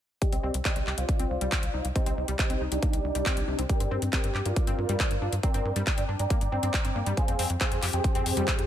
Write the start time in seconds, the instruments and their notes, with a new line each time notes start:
0.22 supersaw synth G4 D5 D#5 G5, kick, closed hi-hat
0.33 analog synth bass C2, synth pluck C4, closed hi-hat
0.43 analog synth bass C2, synth pluck C4
0.54 analog synth bass C2, closed hi-hat
0.65 synth pluck C4, supersaw synth G4 D5 D#5 G5, kick, clap, closed hi-hat
0.76 analog synth bass C2, synth pluck C4, closed hi-hat
0.87 analog synth bass C2, synth pluck G4, clap
0.98 analog synth bass C2, supersaw synth F4 C5 D5 F5, closed hi-hat
1.09 kick, closed hi-hat
1.20 analog synth bass C2, synth pluck C4, closed hi-hat
1.30 analog synth bass C2
1.41 analog synth bass C2, synth pluck G3, closed hi-hat
1.52 synth pluck C5, kick, clap, closed hi-hat
1.63 analog synth bass C2, closed hi-hat
1.74 analog synth bass C2, synth pluck D#4
1.85 analog synth bass C2, closed hi-hat
1.96 synth pluck C4, supersaw synth D#4 G4 C5 D#5, kick, closed hi-hat
2.06 analog synth bass C2, synth pluck C4, closed hi-hat
2.17 analog synth bass C2
2.28 analog synth bass C2, synth pluck G3, closed hi-hat
2.39 supersaw synth D#4 G4 C5 D#5, kick, clap, closed hi-hat
2.50 analog synth bass C2, synth pluck C4, closed hi-hat
2.61 analog synth bass C2, synth pluck D#4
2.72 analog synth bass C2, supersaw synth D4 D#4 G4 D5, closed hi-hat
2.82 synth pluck A#3, kick, closed hi-hat
2.93 analog synth bass C2, closed hi-hat
3.04 analog synth bass C2
3.15 analog synth bass C2, synth pluck G3, closed hi-hat
3.26 synth pluck C4, kick, clap, closed hi-hat
3.37 analog synth bass C2, synth pluck G4, closed hi-hat
3.48 analog synth bass C2, synth pluck C3
3.59 analog synth bass C2, synth pluck C4, closed hi-hat
3.69 supersaw synth G4 A#4 D5 G5, kick, closed hi-hat
3.80 analog synth bass G2, synth pluck C4, closed hi-hat
3.91 analog synth bass G2, synth pluck C4
4.02 analog synth bass G2, closed hi-hat
4.13 synth pluck C4, supersaw synth G4 A#4 D5 G5, kick, clap, closed hi-hat
4.24 analog synth bass G2, synth pluck C4, closed hi-hat
4.35 analog synth bass G2, synth pluck G4, clap
4.46 analog synth bass G2, supersaw synth F4 A#4 D5 F5, closed hi-hat
4.56 kick, closed hi-hat
4.67 analog synth bass G2, synth pluck C4, closed hi-hat
4.78 analog synth bass G2
4.89 analog synth bass G2, synth pluck G3, closed hi-hat
5.00 synth pluck C5, kick, clap, closed hi-hat
5.11 analog synth bass G2, closed hi-hat
5.22 analog synth bass G2, synth pluck D4
5.33 analog synth bass G2, closed hi-hat
5.43 synth pluck C4, supersaw synth A#4 D5 G5 A#5, kick, closed hi-hat
5.54 analog synth bass G2, synth pluck C4, closed hi-hat
5.65 analog synth bass G2
5.76 analog synth bass G2, synth pluck G3, closed hi-hat
5.87 supersaw synth D5 G5 A#5 D6, kick, clap, closed hi-hat
5.98 analog synth bass G2, synth pluck C4, closed hi-hat
6.09 analog synth bass G2, synth pluck D4
6.19 analog synth bass G2, supersaw synth D5 G5 A#5 D6, closed hi-hat
6.30 synth pluck A#3, kick, closed hi-hat
6.41 analog synth bass G2, closed hi-hat
6.52 analog synth bass G2, synth pluck C4
6.63 analog synth bass G2, synth pluck C4, closed hi-hat
6.74 synth pluck C5, kick, clap, closed hi-hat
6.85 analog synth bass G2, synth pluck C4, closed hi-hat
6.96 analog synth bass G2, synth pluck A#3
7.06 analog synth bass G2, synth pluck G3, closed hi-hat
7.17 ambient pad G#2 C3 F3 C4 F4, supersaw synth G#4 C5 F5 G#5, kick, closed hi-hat
7.28 analog synth bass F2, synth pluck C4, closed hi-hat
7.39 analog synth bass F2, synth pluck C4, open hi-hat
7.50 analog synth bass F2, closed hi-hat
7.61 synth pluck C4, supersaw synth G#4 C5 F5 G#5, kick, clap, closed hi-hat
7.72 analog synth bass F2, synth pluck C4, closed hi-hat
7.83 analog synth bass F2, synth pluck G4, clap, open hi-hat
7.93 analog synth bass F2, supersaw synth G4 G#4 C5 G5, closed hi-hat
8.04 kick, closed hi-hat
8.15 analog synth bass F2, synth pluck C4, closed hi-hat
8.26 analog synth bass F2, open hi-hat
8.37 analog synth bass F2, synth pluck G3, closed hi-hat
8.48 synth pluck C5, kick, clap, closed hi-hat
8.59 analog synth bass F2, closed hi-hat